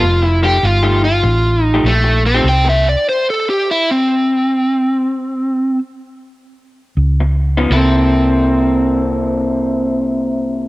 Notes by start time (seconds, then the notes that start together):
Already playing: F4
0.03 F1
0.22 E4, muted clean electric guitar stroke
0.43 F3 A3 D#4 G4
0.63 G1 F4, muted clean electric guitar stroke
0.83 F3 A3 D#4 G4
1.05 F4
1.23 A1, muted clean electric guitar stroke
1.64 D#4
1.74 F3 A3 D#4 G4
1.84 A#1 A3
2.04 muted clean electric guitar stroke
2.26 C4
2.34 F3 A3 D#4 G4
2.44 C2
2.49 G5
2.65 muted clean electric guitar stroke
2.69 E5
2.73 A#3
2.89 D5
3.09 C5
3.30 A4
3.50 G4
3.71 E4
3.91 C4
6.97 C#2
7.20 muted clean electric guitar stroke
7.57 C#3 F3 B3 D#4
7.70 C2 C3 A#3 C4 E4
7.74 A4